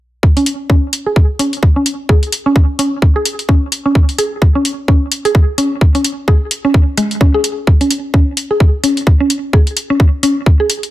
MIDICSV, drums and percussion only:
0, 0, Header, 1, 2, 480
1, 0, Start_track
1, 0, Tempo, 465116
1, 238, Time_signature, 4, 2, 24, 8
1, 11256, End_track
2, 0, Start_track
2, 0, Title_t, "Drums"
2, 238, Note_on_c, 9, 36, 105
2, 341, Note_off_c, 9, 36, 0
2, 379, Note_on_c, 9, 46, 31
2, 478, Note_off_c, 9, 46, 0
2, 478, Note_on_c, 9, 46, 82
2, 581, Note_off_c, 9, 46, 0
2, 718, Note_on_c, 9, 36, 101
2, 822, Note_off_c, 9, 36, 0
2, 958, Note_on_c, 9, 46, 83
2, 1062, Note_off_c, 9, 46, 0
2, 1198, Note_on_c, 9, 36, 100
2, 1302, Note_off_c, 9, 36, 0
2, 1439, Note_on_c, 9, 46, 80
2, 1542, Note_off_c, 9, 46, 0
2, 1579, Note_on_c, 9, 46, 32
2, 1678, Note_on_c, 9, 36, 106
2, 1683, Note_off_c, 9, 46, 0
2, 1782, Note_off_c, 9, 36, 0
2, 1918, Note_on_c, 9, 46, 79
2, 2022, Note_off_c, 9, 46, 0
2, 2158, Note_on_c, 9, 36, 110
2, 2262, Note_off_c, 9, 36, 0
2, 2299, Note_on_c, 9, 46, 34
2, 2399, Note_off_c, 9, 46, 0
2, 2399, Note_on_c, 9, 46, 81
2, 2502, Note_off_c, 9, 46, 0
2, 2638, Note_on_c, 9, 36, 109
2, 2742, Note_off_c, 9, 36, 0
2, 2879, Note_on_c, 9, 46, 88
2, 2982, Note_off_c, 9, 46, 0
2, 3118, Note_on_c, 9, 36, 106
2, 3222, Note_off_c, 9, 36, 0
2, 3359, Note_on_c, 9, 46, 86
2, 3462, Note_off_c, 9, 46, 0
2, 3500, Note_on_c, 9, 46, 35
2, 3598, Note_on_c, 9, 36, 110
2, 3603, Note_off_c, 9, 46, 0
2, 3702, Note_off_c, 9, 36, 0
2, 3839, Note_on_c, 9, 46, 80
2, 3942, Note_off_c, 9, 46, 0
2, 4079, Note_on_c, 9, 36, 110
2, 4182, Note_off_c, 9, 36, 0
2, 4220, Note_on_c, 9, 46, 34
2, 4319, Note_off_c, 9, 46, 0
2, 4319, Note_on_c, 9, 46, 86
2, 4422, Note_off_c, 9, 46, 0
2, 4559, Note_on_c, 9, 36, 109
2, 4662, Note_off_c, 9, 36, 0
2, 4799, Note_on_c, 9, 46, 89
2, 4902, Note_off_c, 9, 46, 0
2, 5039, Note_on_c, 9, 36, 107
2, 5142, Note_off_c, 9, 36, 0
2, 5279, Note_on_c, 9, 46, 87
2, 5382, Note_off_c, 9, 46, 0
2, 5419, Note_on_c, 9, 46, 35
2, 5519, Note_on_c, 9, 36, 112
2, 5523, Note_off_c, 9, 46, 0
2, 5622, Note_off_c, 9, 36, 0
2, 5759, Note_on_c, 9, 46, 84
2, 5862, Note_off_c, 9, 46, 0
2, 5999, Note_on_c, 9, 36, 107
2, 6102, Note_off_c, 9, 36, 0
2, 6139, Note_on_c, 9, 46, 34
2, 6238, Note_off_c, 9, 46, 0
2, 6238, Note_on_c, 9, 46, 82
2, 6342, Note_off_c, 9, 46, 0
2, 6479, Note_on_c, 9, 36, 108
2, 6582, Note_off_c, 9, 36, 0
2, 6718, Note_on_c, 9, 46, 87
2, 6822, Note_off_c, 9, 46, 0
2, 6959, Note_on_c, 9, 36, 108
2, 7062, Note_off_c, 9, 36, 0
2, 7198, Note_on_c, 9, 46, 85
2, 7301, Note_off_c, 9, 46, 0
2, 7339, Note_on_c, 9, 46, 34
2, 7438, Note_on_c, 9, 36, 108
2, 7442, Note_off_c, 9, 46, 0
2, 7542, Note_off_c, 9, 36, 0
2, 7678, Note_on_c, 9, 46, 82
2, 7781, Note_off_c, 9, 46, 0
2, 7918, Note_on_c, 9, 36, 106
2, 8021, Note_off_c, 9, 36, 0
2, 8059, Note_on_c, 9, 46, 33
2, 8158, Note_off_c, 9, 46, 0
2, 8158, Note_on_c, 9, 46, 80
2, 8261, Note_off_c, 9, 46, 0
2, 8398, Note_on_c, 9, 36, 106
2, 8502, Note_off_c, 9, 36, 0
2, 8638, Note_on_c, 9, 46, 86
2, 8741, Note_off_c, 9, 46, 0
2, 8878, Note_on_c, 9, 36, 106
2, 8981, Note_off_c, 9, 36, 0
2, 9118, Note_on_c, 9, 46, 82
2, 9221, Note_off_c, 9, 46, 0
2, 9259, Note_on_c, 9, 46, 33
2, 9358, Note_on_c, 9, 36, 107
2, 9362, Note_off_c, 9, 46, 0
2, 9461, Note_off_c, 9, 36, 0
2, 9598, Note_on_c, 9, 46, 80
2, 9701, Note_off_c, 9, 46, 0
2, 9838, Note_on_c, 9, 36, 103
2, 9941, Note_off_c, 9, 36, 0
2, 9979, Note_on_c, 9, 46, 31
2, 10079, Note_off_c, 9, 46, 0
2, 10079, Note_on_c, 9, 46, 77
2, 10182, Note_off_c, 9, 46, 0
2, 10318, Note_on_c, 9, 36, 104
2, 10421, Note_off_c, 9, 36, 0
2, 10558, Note_on_c, 9, 46, 82
2, 10661, Note_off_c, 9, 46, 0
2, 10798, Note_on_c, 9, 36, 103
2, 10901, Note_off_c, 9, 36, 0
2, 11038, Note_on_c, 9, 46, 83
2, 11141, Note_off_c, 9, 46, 0
2, 11179, Note_on_c, 9, 46, 33
2, 11256, Note_off_c, 9, 46, 0
2, 11256, End_track
0, 0, End_of_file